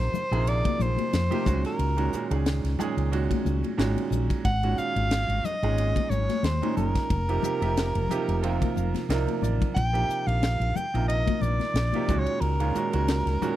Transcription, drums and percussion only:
0.00 ride medium
0.14 hi-hat pedal medium
0.14 low conga medium
0.33 ride medium
0.47 ride medium
0.65 kick medium
0.65 ride medium
0.65 high conga medium
0.79 hi-hat pedal medium
0.79 low conga medium
0.97 ride medium
0.97 high conga medium
1.13 snare medium
1.13 ride medium
1.31 ride medium
1.31 high conga medium
1.46 kick medium
1.46 hi-hat pedal medium
1.46 low conga medium
1.65 snare soft
1.65 ride medium
1.79 ride medium
1.98 ride medium
2.13 hi-hat pedal medium
2.31 ride medium
2.46 snare loud
2.46 ride medium
2.65 snare soft
2.65 ride medium
2.79 hi-hat pedal medium
2.79 low conga medium
2.98 ride medium
3.13 ride medium
3.31 kick medium
3.31 ride medium
3.31 high conga medium
3.46 hi-hat pedal medium
3.46 low conga medium
3.64 ride medium
3.64 high conga medium
3.79 snare medium
3.79 ride medium
3.97 ride soft
3.97 high conga medium
4.12 hi-hat pedal medium
4.12 low conga medium
4.30 kick medium
4.30 ride medium
4.45 kick medium
4.45 ride medium
4.63 ride medium
4.78 hi-hat pedal medium
4.96 ride medium
5.11 snare medium
5.11 ride medium
5.30 ride medium
5.45 hi-hat pedal medium
5.45 low conga medium
5.63 ride soft
5.78 ride medium
5.96 kick medium
5.96 ride soft
5.96 high conga medium
6.11 hi-hat pedal medium
6.11 low conga medium
6.29 snare soft
6.29 ride medium
6.29 high conga medium
6.44 snare medium
6.44 ride medium
6.63 ride medium
6.63 high conga medium
6.77 hi-hat pedal medium
6.77 low conga medium
6.95 kick medium
6.95 snare soft
6.95 ride medium
7.10 kick medium
7.10 ride medium
7.29 ride medium
7.43 hi-hat pedal medium
7.43 low conga medium
7.62 ride medium
7.77 snare loud
7.77 ride medium
7.95 ride medium
8.09 hi-hat pedal medium
8.09 low conga medium
8.29 ride medium
8.44 ride medium
8.61 kick medium
8.61 ride medium
8.61 high conga medium
8.76 hi-hat pedal medium
8.76 low conga medium
8.95 snare soft
8.95 ride medium
8.95 high conga medium
9.10 snare medium
9.10 ride medium
9.28 ride medium
9.28 high conga soft
9.42 hi-hat pedal medium
9.42 low conga medium
9.61 kick medium
9.61 ride soft
9.61 low conga medium
9.77 kick medium
9.77 ride medium
9.95 ride soft
10.10 hi-hat pedal medium
10.28 ride medium
10.43 snare loud
10.43 ride medium
10.61 ride soft
10.76 hi-hat pedal medium
10.76 low conga medium
10.95 ride soft
11.10 ride medium
11.27 kick medium
11.27 ride soft
11.27 high conga medium
11.41 hi-hat pedal medium
11.41 low conga medium
11.60 snare soft
11.60 ride soft
11.60 high conga medium
11.76 snare medium
11.76 ride medium
11.93 ride soft
11.93 high conga medium
12.08 kick medium
12.08 hi-hat pedal medium
12.08 low conga medium
12.27 ride medium
12.42 ride medium
12.60 ride medium
12.75 hi-hat pedal medium
12.93 ride medium
13.08 snare loud
13.08 ride medium
13.27 snare soft
13.27 ride medium
13.42 hi-hat pedal medium
13.42 low conga medium

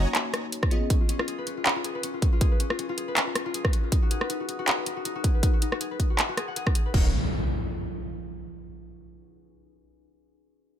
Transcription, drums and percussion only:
0.15 clap loud
0.15 closed hi-hat medium
0.34 cross-stick medium
0.34 closed hi-hat medium
0.52 closed hi-hat medium
0.63 kick loud
0.63 cross-stick medium
0.71 closed hi-hat medium
0.90 kick loud
0.90 closed hi-hat medium
1.09 closed hi-hat medium
1.19 cross-stick medium
1.28 closed hi-hat medium
1.47 closed hi-hat medium
1.66 clap loud
1.66 closed hi-hat medium
1.84 closed hi-hat medium
2.03 closed hi-hat medium
2.22 kick loud
2.22 closed hi-hat medium
2.41 kick loud
2.41 closed hi-hat medium
2.60 closed hi-hat medium
2.70 cross-stick medium
2.79 closed hi-hat medium
2.98 closed hi-hat medium
3.17 clap loud
3.17 closed hi-hat medium
3.35 cross-stick medium
3.35 closed hi-hat medium
3.54 closed hi-hat medium
3.65 kick medium
3.65 cross-stick medium
3.73 closed hi-hat medium
3.92 kick loud
3.92 closed hi-hat medium
4.11 closed hi-hat medium
4.21 cross-stick medium
4.30 closed hi-hat medium
4.49 closed hi-hat medium
4.68 clap loud
4.68 closed hi-hat medium
4.86 closed hi-hat medium
5.05 closed hi-hat medium
5.24 kick loud
5.24 closed hi-hat medium
5.43 kick loud
5.43 closed hi-hat medium
5.62 closed hi-hat medium
5.72 cross-stick medium
5.81 closed hi-hat medium
6.00 kick medium
6.00 closed hi-hat medium
6.19 clap loud
6.19 closed hi-hat medium
6.37 cross-stick medium
6.37 closed hi-hat medium
6.56 closed hi-hat medium
6.67 kick loud
6.67 cross-stick medium
6.75 closed hi-hat medium
6.94 kick loud
6.94 crash medium

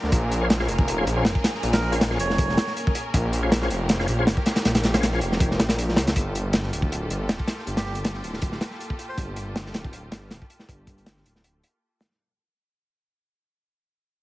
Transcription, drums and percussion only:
0.04 snare soft
0.12 kick loud
0.12 closed hi-hat medium
0.32 closed hi-hat medium
0.50 snare loud
0.50 closed hi-hat medium
0.60 snare medium
0.68 closed hi-hat medium
0.79 kick loud
0.88 closed hi-hat medium
1.07 closed hi-hat medium
1.25 snare loud
1.25 closed hi-hat medium
1.35 kick loud
1.44 snare loud
1.44 closed hi-hat medium
1.55 snare soft
1.63 closed hi-hat medium
1.73 snare loud
1.73 closed hi-hat medium
1.81 snare soft
1.92 closed hi-hat medium
2.01 snare loud
2.01 closed hi-hat loud
2.10 snare soft
2.19 closed hi-hat medium
2.30 snare soft
2.38 kick loud
2.38 closed hi-hat medium
2.49 snare soft
2.57 snare loud
2.57 closed hi-hat medium
2.67 snare soft
2.77 closed hi-hat medium
2.87 kick medium
2.95 closed hi-hat medium
3.14 kick loud
3.14 closed hi-hat medium
3.33 closed hi-hat medium
3.52 snare loud
3.52 closed hi-hat medium
3.62 snare medium
3.70 closed hi-hat medium
3.89 snare loud
3.89 closed hi-hat medium
4.00 snare medium
4.08 closed hi-hat medium
4.27 snare loud
4.27 closed hi-hat medium
4.37 kick loud
4.46 snare loud
4.46 closed hi-hat medium
4.56 snare loud
4.56 closed hi-hat medium
4.65 snare loud
4.65 closed hi-hat medium
4.75 snare loud
4.75 closed hi-hat medium
4.83 snare loud
4.83 closed hi-hat medium
4.94 snare loud
4.94 closed hi-hat medium
5.03 snare loud
5.03 closed hi-hat medium
5.13 snare soft
5.21 closed hi-hat medium
5.32 snare soft
5.40 kick loud
5.40 closed hi-hat medium
5.51 snare soft
5.59 snare loud
5.59 closed hi-hat medium
5.69 snare loud
5.69 closed hi-hat medium
5.78 closed hi-hat medium
5.89 snare soft
5.96 snare loud
5.96 closed hi-hat medium
6.07 snare loud
6.07 closed hi-hat medium
6.16 kick loud
6.16 closed hi-hat medium
6.35 closed hi-hat medium
6.53 snare loud
6.53 closed hi-hat medium
6.63 snare soft
6.73 closed hi-hat medium
6.82 kick medium
6.92 closed hi-hat medium
7.10 closed hi-hat medium
7.29 snare loud
7.29 closed hi-hat medium
7.39 kick medium
7.47 snare loud
7.47 closed hi-hat medium
7.58 snare soft
7.67 closed hi-hat medium
7.77 snare loud
7.77 closed hi-hat medium
7.86 snare soft
7.95 closed hi-hat medium
8.04 snare loud
8.04 closed hi-hat medium
8.14 snare soft
8.24 closed hi-hat medium
8.34 snare soft
8.42 kick loud
8.42 closed hi-hat medium
8.52 snare soft
8.61 snare loud
8.61 closed hi-hat medium
8.71 snare soft
8.80 closed hi-hat medium
8.90 kick medium
8.99 closed hi-hat medium
9.18 kick loud
9.18 closed hi-hat medium
9.36 closed hi-hat medium
9.56 snare loud
9.56 closed hi-hat medium
9.66 snare medium
9.74 snare loud
9.74 closed hi-hat medium
9.84 kick medium
9.93 closed hi-hat medium
10.12 snare loud
10.12 closed hi-hat medium
10.31 snare loud
10.31 closed hi-hat medium
10.42 kick medium
10.50 closed hi-hat medium
10.59 snare medium
10.69 kick medium
10.69 closed hi-hat medium
10.87 kick medium
10.87 closed hi-hat medium
10.98 closed hi-hat soft
11.06 snare loud
11.06 closed hi-hat medium
11.17 snare soft
11.26 closed hi-hat medium
11.36 snare soft
11.44 closed hi-hat medium
11.64 closed hi-hat medium
12.01 snare loud
12.01 closed hi-hat medium
12.11 snare soft

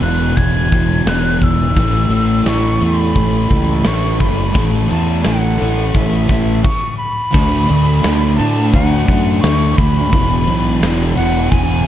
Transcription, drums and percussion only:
0.03 crash medium
0.37 kick medium
0.37 crash medium
0.72 kick medium
0.72 crash medium
1.07 snare loud
1.07 crash medium
1.41 kick medium
1.41 crash medium
1.76 kick loud
1.76 crash medium
2.11 crash medium
2.46 snare loud
2.46 crash medium
2.81 crash medium
3.15 kick medium
3.15 crash medium
3.50 kick medium
3.50 crash medium
3.84 snare loud
3.84 crash medium
4.20 kick medium
4.20 crash medium
4.54 kick loud
4.54 crash medium
4.91 crash medium
5.24 snare loud
5.24 crash medium
5.60 crash medium
5.95 kick medium
5.95 crash medium
6.29 kick medium
6.29 crash medium
6.64 kick loud
6.64 crash loud
7.34 kick loud
7.34 crash loud
7.34 crash medium
7.70 crash medium
8.04 snare loud
8.04 crash medium
8.39 crash medium
8.73 kick medium
8.73 crash medium
9.08 kick medium
9.08 crash medium
9.43 snare loud
9.43 crash medium
9.78 kick medium
9.78 crash medium
10.13 kick loud
10.13 crash loud
10.47 crash medium
10.83 snare loud
10.83 crash medium
11.17 crash medium
11.52 kick medium
11.52 crash medium

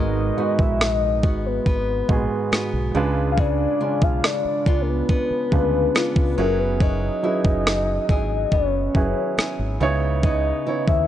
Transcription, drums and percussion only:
0.59 kick medium
0.81 cross-stick loud
1.23 kick medium
1.66 kick medium
2.09 kick medium
2.53 cross-stick loud
3.38 kick loud
4.02 kick medium
4.24 cross-stick loud
4.66 kick medium
5.09 kick medium
5.52 kick medium
5.96 cross-stick loud
6.16 kick loud
6.80 kick loud
7.45 kick medium
7.67 cross-stick loud
8.09 kick medium
8.52 kick medium
8.95 kick medium
9.39 cross-stick loud
10.23 kick loud
10.88 kick medium

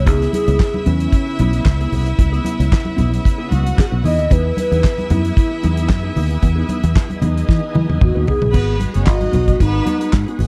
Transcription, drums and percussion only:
0.06 kick loud
0.06 closed hi-hat medium
0.06 low conga medium
0.22 snare soft
0.22 closed hi-hat soft
0.33 closed hi-hat medium
0.33 muted conga soft
0.33 high conga medium
0.48 closed hi-hat soft
0.60 kick loud
0.60 snare loud
0.60 clap medium
0.60 muted conga soft
0.74 high conga medium
0.86 closed hi-hat medium
0.86 muted conga soft
0.86 high conga medium
0.86 low conga medium
1.00 closed hi-hat soft
1.12 kick loud
1.12 closed hi-hat medium
1.12 muted conga soft
1.39 closed hi-hat medium
1.39 muted conga soft
1.39 high conga medium
1.53 closed hi-hat soft
1.65 kick loud
1.65 snare loud
1.65 clap medium
1.81 closed hi-hat soft
1.92 open hi-hat medium
1.92 muted conga soft
1.92 low conga medium
2.06 closed hi-hat soft
2.19 kick medium
2.19 closed hi-hat medium
2.19 muted conga soft
2.19 low conga medium
2.34 closed hi-hat soft
2.44 closed hi-hat medium
2.44 high conga medium
2.60 closed hi-hat soft
2.72 kick loud
2.72 snare loud
2.72 clap medium
2.72 muted conga soft
2.85 high conga medium
2.98 closed hi-hat soft
2.98 muted conga soft
2.98 high conga medium
2.98 low conga medium
3.14 closed hi-hat soft
3.25 kick medium
3.25 closed hi-hat medium
3.25 muted conga soft
3.51 closed hi-hat soft
3.51 muted conga soft
3.51 high conga medium
3.66 closed hi-hat soft
3.78 kick loud
3.78 snare loud
3.78 clap medium
4.04 open hi-hat medium
4.04 muted conga soft
4.04 low conga medium
4.19 closed hi-hat soft
4.30 kick loud
4.30 closed hi-hat medium
4.30 low conga medium
4.57 closed hi-hat medium
4.57 muted conga soft
4.57 high conga medium
4.72 closed hi-hat soft
4.84 kick loud
4.84 snare loud
4.84 clap medium
4.98 closed hi-hat soft
4.98 high conga medium
5.10 closed hi-hat medium
5.10 high conga medium
5.10 low conga medium
5.25 closed hi-hat soft
5.37 kick loud
5.37 closed hi-hat medium
5.63 closed hi-hat medium
5.63 muted conga soft
5.63 high conga medium
5.77 closed hi-hat soft
5.89 kick loud
5.89 snare loud
5.89 clap medium
6.16 open hi-hat medium
6.16 muted conga soft
6.16 low conga medium
6.30 closed hi-hat soft
6.42 kick medium
6.42 closed hi-hat medium
6.42 muted conga soft
6.42 low conga medium
6.69 closed hi-hat medium
6.69 muted conga soft
6.69 high conga medium
6.83 closed hi-hat soft
6.96 kick loud
6.96 snare loud
6.96 clap medium
6.96 muted conga soft
7.10 closed hi-hat soft
7.10 high conga medium
7.22 closed hi-hat medium
7.22 muted conga soft
7.22 high conga medium
7.22 low conga medium
7.38 closed hi-hat soft
7.48 kick medium
7.48 snare medium
7.48 muted conga soft
7.75 high tom medium
7.75 muted conga soft
7.75 high conga medium
7.90 high tom medium
8.01 kick loud
8.01 mid tom medium
8.01 muted conga soft
8.27 floor tom medium
8.27 muted conga soft
8.27 low conga medium
8.42 floor tom medium
8.53 kick medium
8.53 crash medium
8.53 low conga medium
8.80 closed hi-hat medium
8.80 muted conga soft
8.80 high conga medium
8.94 closed hi-hat soft
9.07 kick loud
9.07 snare loud
9.07 clap medium
9.21 closed hi-hat soft
9.21 high conga medium
9.33 closed hi-hat soft
9.33 muted conga soft
9.33 high conga medium
9.33 low conga medium
9.48 kick medium
9.48 closed hi-hat soft
9.60 kick loud
9.60 closed hi-hat medium
9.86 closed hi-hat medium
9.86 high conga medium
10.01 closed hi-hat soft
10.13 kick loud
10.13 snare loud
10.13 clap medium
10.28 closed hi-hat soft
10.39 open hi-hat medium
10.39 muted conga soft
10.39 high conga medium
10.39 low conga medium

